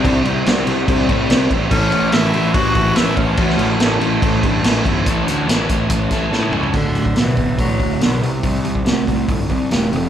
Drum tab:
CC |x-x-x-x-x-x-x-x-|x-x-x-x-x-x-x-x-|x-x-x-x-x-x-x-x-|----------------|
HH |----------------|----------------|----------------|x-x-x-x-x-x-----|
SD |----o-------o---|----o-------o---|-o--o-------o---|----o-----o-o---|
T1 |----------------|----------------|----------------|-------------o--|
T2 |----------------|----------------|----------------|--------------o-|
FT |----------------|----------------|----------------|---------------o|
BD |o-------o-o---o-|o-------o-o---o-|o-------o-o---o-|o-----o-o-o-----|

CC |x---------------|----------------|
HH |--o-o-o-o-o-o-o-|o-o-o-o-o-o-o-o-|
SD |----o-------o---|----o-------o---|
T1 |----------------|----------------|
T2 |----------------|----------------|
FT |----------------|----------------|
BD |o--o--o-o-o-----|o--o--o-o-o-----|